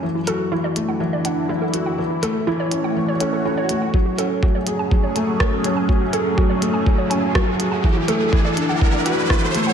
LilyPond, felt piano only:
\new Staff \with { instrumentName = "Felt piano" } { \time 4/4 \key fis \minor \tempo 4 = 123 e8 fis'8 e8 a8 e8 d'8 e8 fis'8 | e8 a8 e8 cis'8 e8 cis'8 cis'8 a8 | fis8 cis'8 fis8 gis'8 fis8 a8 fis8 cis'8 | fis8 gis'8 fis8 a8 fis8 cis'8 fis8 gis'8 |
e8 a8 e8 d'8 e8 fis'8 e8 a8 | }